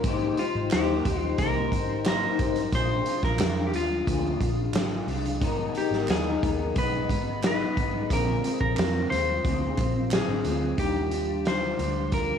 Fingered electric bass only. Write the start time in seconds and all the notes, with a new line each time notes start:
0.04 G#1
0.55 G#1
0.72 D#2
1.06 D#2
1.38 C2
1.72 G#1
2.40 G#1
2.72 A#1
3.23 A#1
3.39 F2
3.73 D#2
4.07 D2
4.41 A#1
4.72 G#1
5.07 C2
5.41 G#1
5.91 G#1
6.08 D#2
6.43 D#2
6.76 B1
7.09 G#1
7.77 G#1
8.10 A#1
8.61 A#1
8.77 F2
9.11 D#2
9.45 D2
9.78 A#1
10.28 G#1
10.44 D2
10.78 D#2
11.79 D2